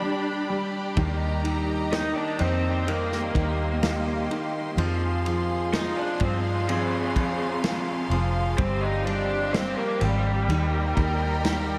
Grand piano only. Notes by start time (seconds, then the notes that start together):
Already playing: G3
0.02 G3
0.50 G3
0.97 D#3
1.44 D#3
1.91 D#3
2.40 D#3
2.87 D#3
3.35 D#3
3.82 D#3
4.31 D#3
4.78 F3
5.26 F3
5.74 F3
6.22 F3
6.69 F3
7.16 F3
7.64 F3
8.12 F3
8.59 G3
9.07 G3
9.54 G3
10.02 G3
10.50 D#3
10.96 D#3
11.45 D#3